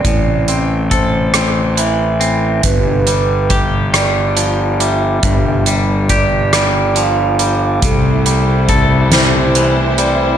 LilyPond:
<<
  \new Staff \with { instrumentName = "Vibraphone" } { \time 6/8 \key g \mixolydian \tempo 4. = 46 d''8 r8 c''4 e''4 | b'4 r8 d''4 e''8~ | e''8 r8 d''4 f''4 | a'4 r8 c''4 d''8 | }
  \new Staff \with { instrumentName = "String section" } { \time 6/8 \key g \mixolydian r2. | r2. | r2. | <c a e' c''>2. | }
  \new Staff \with { instrumentName = "Clean electric guitar" } { \clef bass \time 6/8 \key g \mixolydian <a, e c' a'>8 c'8 a'8 c'8 e8 c'8 | g,8 g8 g'8 g8 f8 g8 | g,8 g8 g'8 g8 f8 g8 | c8 g8 a'8 g8 e8 g8 | }
  \new Staff \with { instrumentName = "Fingered electric bass" } { \clef bass \time 6/8 \key g \mixolydian a,,2. | g,,2. | g,,2. | c,2. | }
  \new DrumStaff \with { instrumentName = "Drums" } \drummode { \time 6/8 <hh bd>8 hh8 <hh bd>8 <hh ss>8 hh8 hh8 | <hh bd>8 hh8 <hh bd>8 <hh ss>8 hh8 hh8 | <hh bd>8 hh8 <hh bd>8 <hh ss>8 hh8 hh8 | <hh bd>8 hh8 <hh bd>8 <hh sn>8 hh8 hh8 | }
>>